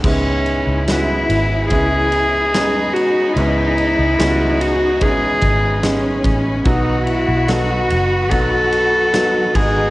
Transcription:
<<
  \new Staff \with { instrumentName = "String section" } { \time 4/4 \key cis \minor \tempo 4 = 72 << { b''1~ | b''1 | b''2.~ b''8 gis''8 | } \\ { <gis' cis'' gis''>1~ | <gis' cis'' gis''>1 | <fis' b' dis''>1 | } >> }
  \new Staff \with { instrumentName = "Cello" } { \time 4/4 \key cis \minor cis'4 e'4 gis'4. fis'8 | e'4. fis'8 gis'4. r8 | dis'8 e'8 fis'4 a'4. gis'8 | }
  \new Staff \with { instrumentName = "Cello section" } { \time 4/4 \key cis \minor e'2. dis'4~ | dis'2. cis'4 | fis'2.~ fis'8 dis'8 | }
  \new Staff \with { instrumentName = "Upright piano" } { \time 4/4 \key cis \minor << { <gis b cis' e'>4 <gis b cis' fis'>4 <gis b cis' e'>4 <gis b cis' dis'>4 | <e gis b cis'>4 <gis b cis' eis' fis'>4 <e gis b cis'>4 <gis b cis' dis'>4 | <fis b fis' dis''>4 <fis b dis' a'>4 <fis b dis' fis'>4 <fis b dis' fis'>8 <gis b dis' fis'>8 | } \\ { gis,4. r2 r8 | gis,4. r2 r8 | r1 | } >> }
  \new Staff \with { instrumentName = "Fingered electric bass" } { \clef bass \time 4/4 \key cis \minor cis,8. cis,8. gis,,8 cis,4. r8 | cis,8. cis,16 cis,4. gis,,4 a,,8 | b,,8. b,,8. fis,,8 b,,4. gis,,8 | }
  \new DrumStaff \with { instrumentName = "Drums" } \drummode { \time 4/4 <cymc bd>8 cymr8 <cymr sn>8 cymr8 <bd cymr>8 cymr8 <cymr sn>8 cymr8 | cymr8 cymr8 <cymr sn>8 cymr8 <bd cymr>8 <bd cymr>8 <cymr sn>8 <bd cymr>8 | <bd cymr>8 cymr8 <cymr sn>8 cymr8 <bd cymr>8 cymr8 <cymr sn>8 <cymc bd>8 | }
>>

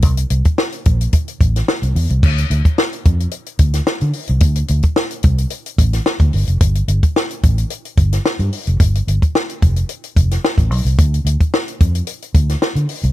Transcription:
<<
  \new Staff \with { instrumentName = "Fingered electric bass" } { \clef bass \time 4/4 \key g \dorian \tempo 4 = 110 c,8 c,16 r8. bes,,8 r8 a,,8 r16 c,16 e,16 c,16 | d,8 d,16 r8. f,8 r8 d,8 r16 d16 r16 c,16 | d,8 d,16 r8. c,8 r8 a,,8 r16 d,16 g,,16 f,,16 | g,,8 g,,16 r8. a,,8 r8 g,,8 r16 g,16 r16 f,,16 |
g,,8 g,,16 r8. f,,8 r8 f,,8 r16 a,,16 b,,16 c,16 | d,8 d,16 r8. f,8 r8 d,8 r16 d16 r16 c,16 | }
  \new DrumStaff \with { instrumentName = "Drums" } \drummode { \time 4/4 <hh bd>16 hh16 hh16 <hh bd>16 sn16 hh16 <hh bd>16 hh16 <hh bd>16 hh16 <hh bd>16 <hh sn>16 sn16 hh16 hho16 hh16 | <cymc bd>16 hh16 hh16 <hh bd>16 sn16 hh16 <hh bd>16 hh16 hh16 hh16 <hh bd>16 <hh sn>16 sn16 hh16 hho16 hh16 | <hh bd>16 hh16 hh16 <hh bd>16 sn16 hh16 <hh bd>16 hh16 hh16 hh16 <hh bd>16 <hh sn>16 sn16 <hh bd>16 hho16 hh16 | <hh bd>16 hh16 hh16 <hh bd>16 sn16 hh16 <hh bd>16 hh16 hh16 hh16 <hh bd>16 <hh sn>16 sn16 hh16 hho16 hh16 |
<hh bd>16 hh16 hh16 <hh bd>16 sn16 hh16 <hh bd>16 hh16 hh16 hh16 <hh bd>16 <hh sn>16 sn16 <hh bd>16 hho16 hh16 | <hh bd>16 hh16 hh16 <hh bd>16 sn16 hh16 <hh bd>16 hh16 hh16 hh16 <hh bd>16 <hh sn>16 sn16 hh16 hho16 hh16 | }
>>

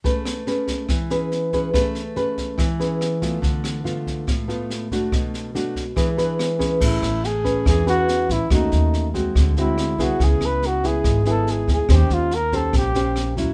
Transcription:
<<
  \new Staff \with { instrumentName = "Flugelhorn" } { \time 4/4 \key a \major \tempo 4 = 142 r1 | r1 | r1 | r1 |
e'4 gis'4 gis'8 fis'4 e'8 | dis'4. r4 e'4 fis'8 | gis'8 b'8 fis'8 gis'4 a'8 gis'8 gis'8 | g'8 f'8 ais'8 a'8 g'4. r8 | }
  \new Staff \with { instrumentName = "Nylon-string guitar" } { \time 4/4 \key a \major << { <cis' gis' b'>4 <cis' gis' b'>4 r8 <cis' gis' b'>4 <cis' gis' b'>8 | <cis' gis' b'>8 r8 <cis' gis' b'>4 r8 <cis' gis' b'>4 <a b f'>8~ | <a b f'>4 <a b f'>4. <a b f'>4 <a d' fis'>8~ | <a d' fis'>4 <a d' fis'>8 r8 <d' gis' b'>8 <d' gis' b'>4 <cis' gis' b'>8~ |
<cis' gis' b'>4 r8 <cis' gis' b'>4 <cis' gis' b'>4. | <a cis' fis'>4. <gis c' fis'>4 <gis c' fis'>4 <b e' gis'>8~ | <b e' gis'>4. <b e' gis'>4 <b e' gis'>4. | <cis' g' bis'>4 r8 <cis' g' bis'>4 <cis' g' bis'>4 <fis cis' e'>8 | } \\ { a2 e2 | a2 e2 | d2 a,2 | b,2 e2 |
a2 e2 | dis2 d2 | cis2 gis,2 | dis2 ais,2 | } >> }
  \new Staff \with { instrumentName = "Upright bass" } { \clef bass \time 4/4 \key a \major r1 | r1 | r1 | r1 |
a,,8 a,,4. e,4. a,,16 r16 | dis,8 dis,4. d,4. c,16 r16 | cis,8 cis,4. gis,,4. d,16 r16 | dis,8 dis,4. ais,,4. dis,16 r16 | }
  \new DrumStaff \with { instrumentName = "Drums" } \drummode { \time 4/4 <bd sn>8 <ss sn>8 sn8 <bd sn>8 <bd ss sn>8 sn8 sn8 <bd sn>8 | <bd ss sn>8 sn8 sn8 <bd sn>8 <bd ss sn>8 sn8 <ss sn>8 <bd sn>8 | <bd sn>8 <ss sn>8 sn8 <bd sn>8 <bd ss sn>8 sn8 sn8 <bd sn>8 | <bd ss sn>8 sn8 sn8 <bd sn>8 <bd ss sn>8 sn8 <ss sn>8 <bd sn>8 |
<cymc bd sn>8 <ss sn>8 sn8 <bd sn>8 <bd ss sn>8 sn8 sn8 <bd sn>8 | <bd ss sn>8 sn8 sn8 <bd sn>8 <bd ss sn>8 sn8 <ss sn>8 <bd sn>8 | <bd sn>8 <ss sn>8 sn8 <bd sn>8 <bd ss sn>8 sn8 sn8 <bd sn>8 | <bd ss sn>8 sn8 sn8 <bd sn>8 <bd ss sn>8 sn8 <ss sn>8 <bd sn>8 | }
>>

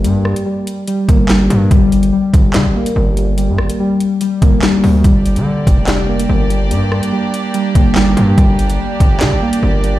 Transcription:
<<
  \new Staff \with { instrumentName = "String section" } { \time 4/4 \key g \minor \tempo 4 = 144 << { r1 | r1 | r1 | d''1~ |
d''1 | d''1 | } \\ { r1 | r1 | r1 | <bes d' g'>1~ |
<bes d' g'>1~ | <bes d' g'>1 | } >> }
  \new Staff \with { instrumentName = "Synth keys" } { \clef bass \time 4/4 \key g \minor <g bes>4 g4 g8 bes8 g8 g8 | g4 g4 g8 bes8 g8 g8 | g4 g4 g8 bes8 g8 g8 | g4 g4 g8 bes8 g8 g8 |
g4 g4 g8 bes8 g8 g8 | g4 g4 g8 bes8 g8 g8 | }
  \new Staff \with { instrumentName = "808-style bass" } { \clef bass \time 4/4 \key g \minor g,8. r4. r16 g,,4 g,8 | g,,4 r8 g,,8 d16 g,,16 r8 g,,4~ | g,,16 g,16 g,,16 r4. r16 g,,8 r8 d,8 | g,,8. d8. f,,4. g,,4 |
g,8. r4. r16 g,,4 g,8 | g,,4 r8 g,,8 d16 g,,16 r8 g,,4 | }
  \new DrumStaff \with { instrumentName = "Drums" } \drummode { \time 4/4 hh8 ss16 hh16 r8 hh8 hh8 <hh bd>8 <hc sn>8 hh8 | <hh bd>8 hh16 hh16 r8 <hh bd>8 <hc hh sn>8. hh16 r8 hh8 | hh8 ss16 hh16 r8 hh8 hh8 <hh bd>8 <hc sn>8 hho8 | <hh bd>8 hh16 hh16 r8 <hh bd>8 <hc hh sn>8. hh16 r8 hh8 |
hh8 ss16 hh16 r8 hh8 hh8 <hh bd>8 <hc sn>8 hh8 | <hh bd>8 hh16 hh16 r8 <hh bd>8 <hc hh sn>8. hh16 r8 hh8 | }
>>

